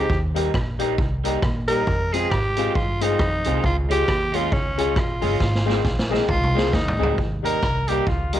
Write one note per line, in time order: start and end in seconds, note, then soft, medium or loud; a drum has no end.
0.00 0.18 G4 medium
0.10 0.47 D#2 loud
0.10 kick loud
0.34 0.47 G3 medium
0.34 0.50 G3 medium
0.34 0.47 A#3 medium
0.34 0.50 A#3 medium
0.34 0.47 D#4 medium
0.34 0.51 D#4 medium
0.34 0.47 G4 loud
0.34 closed hi-hat medium
0.54 0.99 A#1 medium
0.54 muted clean electric guitar stroke soft
0.54 kick loud
0.54 cross-stick loud
0.79 0.91 G3 loud
0.79 0.94 G3 medium
0.79 0.91 A#3 medium
0.79 0.94 A#3 medium
0.79 0.91 D#4 medium
0.79 0.95 D#4 loud
0.79 0.91 G4 loud
0.79 closed hi-hat medium
0.98 1.36 C2 medium
0.98 kick loud
1.24 1.38 G3 medium
1.24 1.36 G3 loud
1.24 1.36 A#3 medium
1.24 1.39 A#3 medium
1.24 1.36 D#4 medium
1.24 1.39 D#4 medium
1.24 1.36 G4 loud
1.24 closed hi-hat loud
1.42 1.80 A#1 medium
1.42 muted clean electric guitar stroke soft
1.42 kick loud
1.42 cross-stick loud
1.68 1.80 G3 medium
1.68 1.82 G3 medium
1.68 1.80 A#3 medium
1.68 1.83 A#3 medium
1.68 1.80 D#4 medium
1.68 1.84 D#4 medium
1.68 1.80 G4 loud
1.68 2.14 A#4 loud
1.68 closed hi-hat medium
1.87 2.25 F2 loud
1.87 kick loud
2.12 2.26 G#3 medium
2.12 2.24 G#3 medium
2.12 2.27 C4 medium
2.12 2.25 C4 medium
2.12 2.25 F4 medium
2.12 2.28 F4 medium
2.12 2.31 G#4 loud
2.12 2.25 G#4 loud
2.12 closed hi-hat loud
2.30 2.69 G#2 medium
2.30 2.77 G4 loud
2.30 muted clean electric guitar stroke soft
2.30 kick loud
2.30 cross-stick loud
2.57 2.71 G#3 medium
2.57 2.69 G#3 loud
2.57 2.69 C4 medium
2.57 2.71 C4 medium
2.57 2.69 F4 medium
2.57 2.72 F4 medium
2.57 2.69 G#4 loud
2.57 closed hi-hat medium
2.75 3.13 G2 medium
2.75 3.04 F4 loud
2.75 kick loud
3.01 3.13 G#3 loud
3.01 3.15 G#3 medium
3.01 3.13 C4 medium
3.01 3.16 C4 loud
3.01 3.65 D#4 loud
3.01 3.13 F4 medium
3.01 3.17 F4 medium
3.01 3.13 G#4 loud
3.01 closed hi-hat loud
3.19 3.42 F2 medium
3.19 kick loud
3.19 cross-stick loud
3.44 3.61 C2 loud
3.44 3.59 G#3 medium
3.44 3.57 G#3 medium
3.44 3.57 C4 medium
3.44 3.60 C4 medium
3.44 3.58 F4 medium
3.44 3.61 F4 medium
3.44 3.58 G#4 loud
3.44 closed hi-hat medium
3.64 4.01 C#2 loud
3.64 3.77 F4 loud
3.64 kick loud
3.89 4.03 G#3 medium
3.89 4.01 G#3 medium
3.89 4.04 C#4 medium
3.89 4.02 C#4 medium
3.89 4.02 F4 medium
3.89 4.04 F4 medium
3.89 4.37 G4 loud
3.89 4.02 G#4 loud
3.89 closed hi-hat medium
4.08 4.46 D#2 loud
4.08 muted clean electric guitar stroke soft
4.08 kick loud
4.08 cross-stick loud
4.32 4.47 G#3 medium
4.32 4.46 G#3 loud
4.32 4.48 C#4 medium
4.32 4.46 C#4 medium
4.32 4.48 F4 medium
4.32 4.46 F4 medium
4.32 4.54 F4 loud
4.32 4.46 G#4 loud
4.32 closed hi-hat medium
4.52 4.96 C#2 medium
4.52 5.01 C#4 medium
4.52 kick loud
4.78 4.90 G#3 loud
4.78 4.92 G#3 medium
4.78 4.90 C#4 medium
4.78 4.93 C#4 medium
4.78 4.90 F4 medium
4.78 4.93 F4 loud
4.78 4.90 G#4 loud
4.78 closed hi-hat medium
4.96 5.24 A#1 loud
4.96 5.02 F4 soft
4.96 5.02 G#4 soft
4.96 muted clean electric guitar stroke soft
4.96 kick loud
4.96 cross-stick loud
5.00 6.13 F4 medium
5.21 5.38 G1 loud
5.21 5.34 G#3 loud
5.21 5.36 G#3 medium
5.21 5.34 C#4 medium
5.21 5.37 C#4 medium
5.21 5.34 F4 medium
5.21 5.37 F4 medium
5.21 5.34 G#4 loud
5.21 open hi-hat medium
5.40 5.78 G#1 loud
5.40 kick loud
5.40 snare medium
5.55 snare medium
5.65 5.81 D#3 medium
5.65 5.78 G#3 loud
5.65 5.81 G#3 medium
5.65 5.78 C4 medium
5.65 5.78 D#4 medium
5.65 5.78 G#4 loud
5.69 5.82 C4 medium
5.69 snare medium
5.84 6.23 A#1 medium
5.84 muted clean electric guitar stroke soft
5.84 kick loud
5.84 snare medium
5.99 snare medium
6.10 6.25 D#3 medium
6.10 6.22 G#3 loud
6.10 6.26 G#3 medium
6.10 6.22 C4 medium
6.10 6.26 C4 medium
6.10 6.23 D#4 medium
6.10 6.23 G#4 loud
6.14 snare medium
6.28 6.73 C2 loud
6.28 6.76 F4 loud
6.28 kick loud
6.28 mid tom medium
6.43 mid tom medium
6.55 6.69 D#3 medium
6.55 6.67 G#3 loud
6.55 6.70 G#3 medium
6.55 6.67 C4 medium
6.55 6.70 C4 medium
6.55 6.67 D#4 medium
6.55 6.67 G#4 loud
6.55 snare medium
6.73 6.96 D#2 medium
6.73 6.79 D#4 soft
6.73 7.19 D#4 loud
6.73 6.79 G#4 soft
6.73 kick loud
6.73 snare medium
6.88 floor tom loud
6.99 7.15 C#2 loud
6.99 7.14 D#3 medium
6.99 7.11 G#3 medium
6.99 7.14 G#3 medium
6.99 7.11 C4 medium
6.99 7.15 C4 loud
6.99 7.11 D#4 medium
6.99 7.11 G#4 loud
7.03 floor tom loud
7.18 7.56 D#2 loud
7.18 kick loud
7.43 7.55 G3 medium
7.43 7.58 G3 medium
7.43 7.55 A#3 medium
7.43 7.59 A#3 medium
7.43 7.56 D#4 medium
7.43 7.59 D#4 medium
7.43 7.56 G4 medium
7.43 7.90 A#4 loud
7.43 closed hi-hat loud
7.63 8.00 C2 medium
7.63 muted clean electric guitar stroke soft
7.63 kick loud
7.63 cross-stick loud
7.88 8.00 G3 medium
7.88 8.03 G3 loud
7.88 8.00 A#3 medium
7.88 8.03 A#3 medium
7.88 8.00 D#4 medium
7.88 8.04 D#4 medium
7.88 8.09 G4 loud
7.88 8.01 G4 loud
7.88 closed hi-hat medium
8.07 8.40 C#2 medium
8.07 8.40 F4 medium
8.07 kick loud
8.33 8.40 G3 medium
8.33 8.40 A#3 medium
8.33 8.40 D#4 medium
8.33 8.40 D#4 loud
8.33 8.40 G4 loud
8.33 closed hi-hat loud